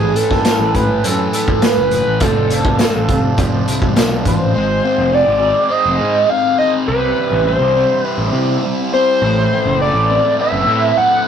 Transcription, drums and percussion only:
0.16 closed hi-hat medium
0.31 kick medium
0.31 snare soft
0.45 snare loud
0.45 closed hi-hat medium
0.45 tambourine medium
0.75 kick medium
0.75 closed hi-hat medium
1.04 closed hi-hat medium
1.33 closed hi-hat medium
1.48 kick medium
1.62 snare loud
1.62 closed hi-hat medium
1.62 tambourine medium
1.91 closed hi-hat medium
2.20 kick loud
2.20 closed hi-hat medium
2.50 closed hi-hat medium
2.65 kick medium
2.79 snare loud
2.79 closed hi-hat medium
2.79 tambourine medium
3.09 kick medium
3.09 closed hi-hat medium
3.38 kick medium
3.38 closed hi-hat medium
3.68 closed hi-hat medium
3.82 kick medium
3.96 snare loud
3.96 closed hi-hat medium
3.96 tambourine medium
4.25 kick medium
4.25 closed hi-hat medium

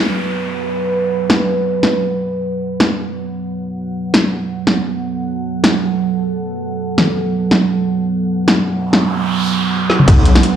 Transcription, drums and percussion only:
1.30 snare medium
1.83 snare medium
2.80 snare medium
4.14 snare medium
4.67 snare medium
5.64 snare medium
6.98 snare medium
7.51 snare medium
8.48 snare medium
8.93 snare medium
9.90 snare medium
10.00 mid tom medium
10.08 kick loud
10.08 closed hi-hat medium
10.08 crash loud
10.25 closed hi-hat medium
10.35 snare medium
10.35 tambourine medium
10.43 closed hi-hat medium

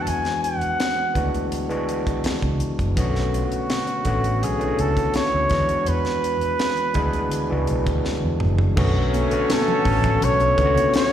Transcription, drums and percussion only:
0.07 closed hi-hat medium
0.25 snare soft
0.25 closed hi-hat soft
0.44 closed hi-hat medium
0.61 closed hi-hat soft
0.80 snare loud
0.80 closed hi-hat medium
1.15 kick medium
1.15 closed hi-hat medium
1.34 closed hi-hat soft
1.52 closed hi-hat medium
1.70 closed hi-hat soft
1.89 closed hi-hat medium
2.07 kick medium
2.07 closed hi-hat soft
2.24 snare loud
2.24 closed hi-hat medium
2.42 kick medium
2.42 closed hi-hat soft
2.60 closed hi-hat medium
2.79 kick medium
2.79 closed hi-hat soft
2.97 kick loud
2.97 closed hi-hat medium
3.15 snare soft
3.34 closed hi-hat medium
3.52 closed hi-hat soft
3.70 snare medium
3.70 closed hi-hat medium
3.87 closed hi-hat soft
4.05 kick medium
4.05 closed hi-hat medium
4.24 closed hi-hat soft
4.43 closed hi-hat medium
4.61 closed hi-hat soft
4.79 closed hi-hat medium
4.97 kick medium
4.97 closed hi-hat medium
5.14 snare loud
5.14 closed hi-hat medium
5.50 kick medium
5.50 snare soft
5.50 closed hi-hat medium
5.69 closed hi-hat soft
5.86 closed hi-hat medium
6.05 snare soft
6.05 closed hi-hat soft
6.24 closed hi-hat medium
6.41 closed hi-hat soft
6.59 snare medium
6.59 closed hi-hat medium
6.77 closed hi-hat soft
6.94 kick medium
6.94 closed hi-hat medium
7.13 closed hi-hat soft
7.32 closed hi-hat medium
7.67 closed hi-hat medium
7.87 kick medium
7.87 closed hi-hat soft
8.05 snare soft
8.40 mid tom medium
8.58 floor tom medium
8.77 kick loud
8.77 crash loud
8.77 muted conga soft
9.14 closed hi-hat medium
9.14 high conga medium
9.31 closed hi-hat soft
9.49 snare loud
9.49 closed hi-hat loud
9.49 muted conga soft
9.49 high conga medium
9.68 muted conga soft
9.68 low conga medium
9.85 kick medium
9.85 open hi-hat medium
10.04 kick medium
10.04 closed hi-hat soft
10.04 low conga medium
10.22 closed hi-hat loud
10.40 closed hi-hat soft
10.40 muted conga soft
10.58 kick loud
10.58 closed hi-hat medium
10.75 closed hi-hat medium
10.75 high conga medium
10.94 snare loud
10.94 closed hi-hat medium
10.94 muted conga soft

